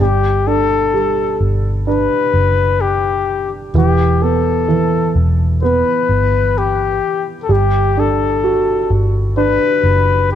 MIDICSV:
0, 0, Header, 1, 4, 480
1, 0, Start_track
1, 0, Time_signature, 4, 2, 24, 8
1, 0, Key_signature, 1, "major"
1, 0, Tempo, 937500
1, 5300, End_track
2, 0, Start_track
2, 0, Title_t, "Flugelhorn"
2, 0, Program_c, 0, 56
2, 8, Note_on_c, 0, 67, 69
2, 242, Note_on_c, 0, 69, 78
2, 249, Note_off_c, 0, 67, 0
2, 720, Note_off_c, 0, 69, 0
2, 963, Note_on_c, 0, 71, 78
2, 1440, Note_on_c, 0, 67, 65
2, 1447, Note_off_c, 0, 71, 0
2, 1799, Note_off_c, 0, 67, 0
2, 1931, Note_on_c, 0, 67, 71
2, 2165, Note_on_c, 0, 69, 61
2, 2173, Note_off_c, 0, 67, 0
2, 2642, Note_off_c, 0, 69, 0
2, 2884, Note_on_c, 0, 71, 80
2, 3370, Note_on_c, 0, 67, 68
2, 3377, Note_off_c, 0, 71, 0
2, 3724, Note_off_c, 0, 67, 0
2, 3803, Note_on_c, 0, 69, 49
2, 3849, Note_on_c, 0, 67, 75
2, 3857, Note_off_c, 0, 69, 0
2, 4094, Note_on_c, 0, 69, 66
2, 4101, Note_off_c, 0, 67, 0
2, 4566, Note_off_c, 0, 69, 0
2, 4804, Note_on_c, 0, 71, 88
2, 5261, Note_off_c, 0, 71, 0
2, 5300, End_track
3, 0, Start_track
3, 0, Title_t, "Upright piano"
3, 0, Program_c, 1, 0
3, 0, Control_c, 1, 64, 127
3, 0, Note_on_c, 1, 55, 50
3, 5, Control_c, 1, 64, 0
3, 109, Control_c, 1, 64, 127
3, 240, Note_on_c, 1, 62, 39
3, 472, Note_off_c, 1, 55, 0
3, 479, Note_on_c, 1, 55, 41
3, 950, Note_off_c, 1, 62, 0
3, 957, Note_on_c, 1, 62, 39
3, 1418, Note_off_c, 1, 55, 0
3, 1897, Note_off_c, 1, 62, 0
3, 1920, Note_on_c, 1, 52, 47
3, 1926, Control_c, 1, 64, 0
3, 2023, Control_c, 1, 64, 127
3, 2159, Note_on_c, 1, 59, 39
3, 2390, Note_off_c, 1, 52, 0
3, 2398, Note_on_c, 1, 52, 43
3, 2872, Note_off_c, 1, 59, 0
3, 2879, Note_on_c, 1, 59, 43
3, 3338, Note_off_c, 1, 52, 0
3, 3818, Note_off_c, 1, 59, 0
3, 3835, Note_on_c, 1, 55, 53
3, 3846, Control_c, 1, 64, 0
3, 3933, Control_c, 1, 64, 127
3, 4082, Note_on_c, 1, 62, 41
3, 4321, Note_on_c, 1, 66, 44
3, 4790, Note_off_c, 1, 62, 0
3, 4798, Note_on_c, 1, 62, 43
3, 5259, Note_off_c, 1, 66, 0
3, 5300, Note_off_c, 1, 55, 0
3, 5300, Note_off_c, 1, 62, 0
3, 5300, End_track
4, 0, Start_track
4, 0, Title_t, "Fingered electric bass"
4, 0, Program_c, 2, 33
4, 0, Note_on_c, 2, 31, 71
4, 697, Note_off_c, 2, 31, 0
4, 717, Note_on_c, 2, 31, 62
4, 1057, Note_off_c, 2, 31, 0
4, 1195, Note_on_c, 2, 30, 64
4, 1896, Note_off_c, 2, 30, 0
4, 1915, Note_on_c, 2, 28, 76
4, 2616, Note_off_c, 2, 28, 0
4, 2638, Note_on_c, 2, 28, 73
4, 2978, Note_off_c, 2, 28, 0
4, 3117, Note_on_c, 2, 31, 68
4, 3577, Note_off_c, 2, 31, 0
4, 3835, Note_on_c, 2, 31, 77
4, 4536, Note_off_c, 2, 31, 0
4, 4557, Note_on_c, 2, 31, 74
4, 4897, Note_off_c, 2, 31, 0
4, 5034, Note_on_c, 2, 30, 68
4, 5300, Note_off_c, 2, 30, 0
4, 5300, End_track
0, 0, End_of_file